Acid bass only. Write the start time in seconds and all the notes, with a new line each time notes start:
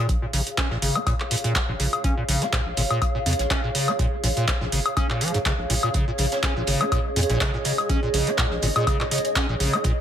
0.22 A#2
0.33 C#3
0.58 C#4
0.71 A#2
0.82 C#3
0.95 C#4
1.07 A#2
1.31 A#2
1.44 A#2
1.69 A#2
1.80 C#3
2.04 C#4
2.17 A#2
2.29 C#3
2.42 C#4
2.53 A#2
2.77 A#2
2.91 A#2
3.15 A#2
3.26 C#3
3.50 C#4
3.64 A#2
3.75 C#3
3.88 C#4
3.99 A#2
4.24 A#2
4.37 A#2
4.61 A#2
4.72 C#3
4.97 C#4
5.10 A#2
5.21 F3
5.34 G#2
5.46 C#3
5.70 A#2
5.83 A#2
5.94 C#3
6.08 A#2
6.19 C#3
6.43 C#4
6.56 A#2
6.68 C#3
6.81 C#4
6.92 A#2
7.16 A#2
7.30 A#2
7.41 C#3
7.54 A#2
7.65 C#3
7.90 C#4
8.03 A#2
8.14 C#3
8.27 C#4
8.38 A#2
8.63 A#2
8.76 A#2
8.87 C#3
9.00 A#2
9.11 C#3
9.36 C#4
9.49 A#2
9.60 C#3
9.73 C#4
9.85 A#2